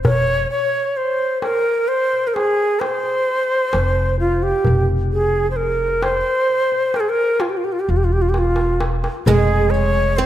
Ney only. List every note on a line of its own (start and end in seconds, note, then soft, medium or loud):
0.05 0.48 C#5 loud
0.51 0.98 C#5 medium
0.97 1.41 C5 medium
1.42 1.90 A#4 medium
1.88 2.29 C5 medium
2.27 2.36 A#4 medium
2.34 2.81 G#4 medium
2.80 4.19 C5 medium
4.20 4.44 F4 medium
4.43 4.85 G4 medium
5.13 5.49 G#4 medium
5.51 5.58 C5 medium
5.56 6.04 A#4 medium
6.03 6.98 C5 medium
6.96 7.02 A#4 medium
7.00 7.11 G#4 medium
7.09 7.42 A#4 medium
7.40 7.51 F4 soft
7.49 7.59 G4 medium
7.57 7.66 F4 soft
7.65 7.74 G4 soft
7.72 7.81 F4 medium
7.80 7.91 G4 medium
7.90 7.98 F4 medium
7.97 8.06 G4 medium
8.04 8.14 F4 medium
8.13 8.23 G4 medium
8.22 8.31 F4 medium
8.29 8.40 G4 medium
8.38 8.80 F4 medium
9.27 9.72 G#4 loud
9.70 10.18 C#5 loud
10.17 10.26 C5 medium